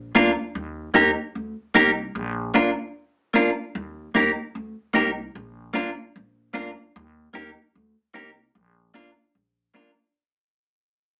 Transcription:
0.00 0.10 A#1 medium
0.15 0.33 D2 loud
0.15 0.30 A#3 medium
0.15 0.30 D4 medium
0.15 0.30 F4 medium
0.15 0.31 A#4 medium
0.55 0.90 D#2 loud
0.94 1.14 D#2 medium
0.94 1.10 A#3 medium
0.94 1.10 D#4 medium
0.94 1.10 G4 medium
0.94 1.10 A#4 medium
1.35 1.53 D2 medium
1.75 2.11 C2 medium
1.75 1.90 A#3 medium
1.75 1.90 D#4 medium
1.75 1.90 G4 medium
1.75 1.91 A#4 medium
2.15 2.50 A#1 loud
2.54 2.74 D2 medium
2.54 2.70 A#3 medium
2.54 2.70 D4 medium
2.54 2.70 F4 medium
2.54 2.70 A#4 medium
3.34 3.49 A#3 medium
3.34 3.50 D4 medium
3.34 3.50 F4 medium
3.34 3.50 A#4 loud
3.75 4.10 D#2 loud
4.15 4.33 D#2 medium
4.15 4.30 A#3 medium
4.15 4.30 D#4 medium
4.15 4.31 G4 medium
4.15 4.31 A#4 medium
4.55 4.73 D2 medium
4.94 5.30 C2 medium
4.94 5.09 A#3 medium
4.94 5.10 D#4 medium
4.94 5.10 G4 medium
4.94 5.10 A#4 medium
5.35 5.70 A#1 medium
5.74 5.94 D2 medium
5.74 5.89 A#3 medium
5.74 5.90 D4 medium
5.74 5.90 F4 medium
5.74 5.90 A#4 medium
6.16 6.51 A#1 medium
6.54 6.74 D2 medium
6.54 6.69 A#3 medium
6.54 6.70 D4 medium
6.54 6.70 F4 medium
6.54 6.70 A#4 medium
6.96 7.31 D#2 loud
7.34 7.54 D#2 medium
7.34 7.49 A#3 medium
7.34 7.50 D#4 medium
7.34 7.50 G4 medium
7.34 7.50 A#4 medium
7.75 7.93 D2 medium
8.14 8.50 C2 medium
8.14 8.29 A#3 medium
8.14 8.30 D#4 medium
8.14 8.30 G4 medium
8.14 8.30 A#4 medium
8.55 8.90 A#1 loud
8.94 9.13 D2 medium
8.94 9.10 A#3 medium
8.94 9.10 D4 medium
8.94 9.10 F4 medium
8.94 9.10 A#4 medium
9.35 9.70 A#1 medium
9.74 9.90 A#3 medium
9.74 9.90 D4 medium
9.74 9.90 F4 medium
9.74 9.91 A#4 medium

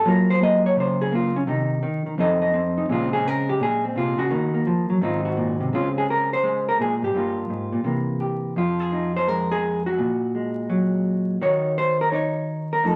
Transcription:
0.05 1.46 F#3 medium
0.05 0.40 A#3 medium
0.05 1.14 F4 medium
0.05 0.30 A#4 medium
0.30 0.42 C5 medium
0.41 1.11 A#3 medium
0.41 0.65 D#5 loud
0.66 0.78 C#5 medium
0.77 1.46 C#3 medium
0.77 1.01 C5 medium
1.01 1.13 G#4 medium
1.12 1.35 A#3 medium
1.12 1.37 F4 medium
1.36 1.47 C#4 medium
1.47 1.83 C3 medium
1.47 1.82 D#3 medium
1.47 2.18 D#4 medium
1.83 2.05 D#3 medium
2.06 2.18 D#3 medium
2.18 2.89 F2 medium
2.18 2.52 C4 medium
2.18 2.77 D#4 medium
2.18 2.89 A4 medium
2.18 2.41 D#5 medium
2.42 2.92 D#5 medium
2.54 2.88 C4 medium
2.78 2.90 D#4 medium
2.89 3.25 A#2 medium
2.89 3.23 C#3 medium
2.89 4.31 G#3 medium
2.89 3.48 C4 medium
2.89 3.13 F4 medium
3.13 3.28 G#4 loud
3.25 3.60 C#3 medium
3.25 3.49 A#4 loud
3.49 3.61 G4 loud
3.60 4.29 A#2 medium
3.60 3.84 G#4 loud
3.85 3.96 C4 medium
3.96 4.17 C3 medium
3.96 4.19 F4 medium
4.18 4.30 C#3 medium
4.18 4.66 F#4 loud
4.31 4.66 D#3 medium
4.31 4.53 A#3 medium
4.54 5.00 A#3 medium
4.67 4.89 F3 medium
4.90 5.02 F#3 medium
5.01 5.71 G#2 medium
5.01 5.73 D#3 medium
5.01 5.72 C4 medium
5.01 5.72 D#4 medium
5.01 5.25 F4 medium
5.25 5.71 F#4 medium
5.37 5.60 A#2 medium
5.60 5.72 C3 medium
5.73 6.79 C#3 medium
5.73 6.42 G#3 medium
5.73 7.14 C4 soft
5.73 5.88 F4 medium
5.98 6.09 G#4 medium
6.10 6.32 A#4 medium
6.33 6.68 C5 loud
6.43 7.13 G#3 medium
6.69 6.80 A#4 loud
6.79 7.02 A#2 medium
6.79 6.95 G#4 medium
7.02 7.14 G#2 medium
7.02 8.19 G4 medium
7.15 7.49 G2 medium
7.15 7.85 G3 medium
7.15 7.85 A#3 soft
7.15 7.87 F4 soft
7.50 7.73 G#2 medium
7.72 7.84 A#2 medium
7.84 8.54 C3 medium
7.84 8.55 E3 soft
7.84 8.55 A#3 medium
8.20 8.55 G4 soft
8.56 9.99 F2 medium
8.56 9.16 F4 medium
8.80 9.50 G#4 loud
8.92 9.98 D#4 soft
9.17 9.28 C5 loud
9.28 9.97 G#3 medium
9.28 9.87 A#4 medium
9.51 9.86 G#4 loud
9.86 11.41 F#4 loud
9.98 11.41 A#2 medium
10.35 11.41 G#3 soft
10.70 11.39 F#3 medium
11.41 12.84 D#3 medium
11.41 12.12 D#4 medium
11.41 12.83 F#4 medium
11.41 11.77 C#5 loud
11.78 12.00 C5 loud
12.01 12.08 A#4 loud
12.12 12.85 D#4 medium
12.12 12.71 C#5 loud
12.73 12.86 A#4 loud
12.84 12.96 F2 medium
12.84 12.96 A3 medium
12.84 12.96 D#4 medium
12.84 12.96 F4 medium
12.84 12.96 A4 loud

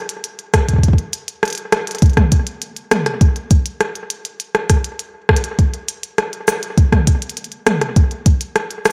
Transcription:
0.09 closed hi-hat medium
0.24 closed hi-hat medium
0.39 closed hi-hat soft
0.54 kick loud
0.54 cross-stick loud
0.54 closed hi-hat loud
0.69 kick soft
0.69 closed hi-hat medium
0.73 kick soft
0.78 kick medium
0.83 kick medium
0.83 closed hi-hat medium
0.88 kick medium
0.93 kick medium
0.98 closed hi-hat soft
1.13 closed hi-hat loud
1.28 closed hi-hat medium
1.43 cross-stick medium
1.43 closed hi-hat soft
1.45 closed hi-hat soft
1.48 closed hi-hat soft
1.50 closed hi-hat soft
1.53 closed hi-hat soft
1.55 closed hi-hat soft
1.58 closed hi-hat soft
1.72 cross-stick loud
1.72 closed hi-hat medium
1.87 closed hi-hat medium
1.91 closed hi-hat soft
1.95 closed hi-hat soft
1.98 closed hi-hat soft
2.02 kick loud
2.02 closed hi-hat medium
2.06 closed hi-hat soft
2.10 closed hi-hat soft
2.13 kick loud
2.13 cross-stick medium
2.13 closed hi-hat soft
2.17 closed hi-hat soft
2.17 mid tom medium
2.32 kick medium
2.32 closed hi-hat loud
2.47 closed hi-hat medium
2.62 closed hi-hat medium
2.76 closed hi-hat soft
2.91 cross-stick loud
2.91 closed hi-hat medium
2.91 mid tom medium
3.06 cross-stick medium
3.06 closed hi-hat medium
3.21 kick loud
3.21 closed hi-hat medium
3.36 closed hi-hat soft
3.51 kick loud
3.51 closed hi-hat medium
3.66 closed hi-hat medium
3.81 cross-stick medium
3.81 closed hi-hat medium
3.95 closed hi-hat soft
4.10 closed hi-hat medium
4.25 closed hi-hat medium
4.40 closed hi-hat medium
4.55 cross-stick medium
4.55 closed hi-hat soft
4.70 kick medium
4.70 cross-stick medium
4.70 closed hi-hat medium
4.84 closed hi-hat medium
4.99 closed hi-hat medium
5.29 kick loud
5.29 cross-stick loud
5.36 closed hi-hat medium
5.44 closed hi-hat medium
5.59 kick medium
5.59 closed hi-hat medium
5.74 closed hi-hat soft
5.88 closed hi-hat medium
6.03 closed hi-hat soft
6.18 cross-stick medium
6.18 closed hi-hat medium
6.33 closed hi-hat soft
6.48 cross-stick loud
6.48 closed hi-hat medium
6.48 cabasa medium
6.63 closed hi-hat medium
6.78 kick loud
6.78 closed hi-hat soft
6.92 kick loud
6.92 cross-stick medium
6.92 closed hi-hat soft
6.92 mid tom medium
7.07 kick medium
7.07 closed hi-hat medium
7.22 closed hi-hat soft
7.29 closed hi-hat soft
7.37 closed hi-hat medium
7.44 closed hi-hat soft
7.52 closed hi-hat soft
7.67 cross-stick loud
7.67 closed hi-hat medium
7.67 mid tom medium
7.81 cross-stick medium
7.81 closed hi-hat soft
7.96 kick loud
7.96 closed hi-hat medium
8.11 closed hi-hat soft
8.26 kick loud
8.26 closed hi-hat medium
8.41 closed hi-hat soft
8.56 cross-stick medium
8.56 closed hi-hat soft
8.71 closed hi-hat soft
8.85 cross-stick loud
8.85 closed hi-hat medium
8.85 cabasa soft

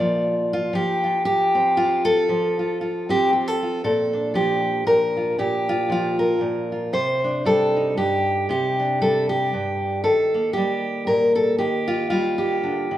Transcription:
0.00 0.71 A#2 medium
0.00 0.73 F3 medium
0.00 0.53 F4 soft
0.00 0.74 D5 loud
0.53 0.75 F4 medium
0.73 2.29 F3 medium
0.73 1.24 G4 medium
1.04 1.77 F4 soft
1.25 2.04 G4 medium
1.55 2.26 C4 medium
1.77 2.58 F4 medium
2.05 3.09 A4 loud
2.29 4.33 F3 medium
2.59 2.80 F4 soft
2.81 3.61 F4 medium
3.09 3.81 C4 medium
3.09 3.32 G4 medium
3.33 3.48 G4 medium
3.48 3.83 A4 soft
3.63 3.82 F4 soft
3.84 4.85 A#2 medium
3.84 4.35 A4 medium
4.13 6.96 D4 soft
4.34 5.88 F3 medium
4.34 4.86 G4 medium
4.86 5.36 A#2 medium
4.86 5.38 A#4 medium
5.17 5.36 F4 soft
5.38 6.39 A#2 medium
5.38 6.19 G4 medium
5.69 5.91 F4 medium
5.89 6.93 F3 medium
5.89 6.71 F4 medium
6.19 6.93 A#4 medium
6.41 6.90 A#2 medium
6.72 6.91 F4 soft
6.93 7.97 C3 medium
6.93 7.45 C5 loud
7.24 8.47 D4 soft
7.45 9.01 G3 medium
7.45 7.97 A4 medium
7.76 8.83 D#4 soft
7.97 8.49 G2 medium
7.97 8.49 G4 medium
8.49 9.52 C3 medium
8.49 9.01 G4 medium
8.80 10.02 D4 soft
9.01 10.07 G3 medium
9.01 9.29 A4 medium
9.29 10.03 G4 medium
9.54 10.05 G2 medium
10.04 11.56 D#3 medium
10.04 10.53 A4 medium
10.34 12.98 A#3 soft
10.53 11.57 G3 medium
10.53 11.06 G4 medium
11.07 11.56 A#2 medium
11.07 11.35 A#4 medium
11.35 11.58 A4 medium
11.59 12.62 D#3 medium
11.59 12.37 G4 medium
11.88 12.09 F4 medium
12.10 12.98 G3 medium
12.10 12.91 F4 medium
12.38 12.98 G4 medium
12.63 12.91 D3 medium
12.91 12.98 D#3 medium

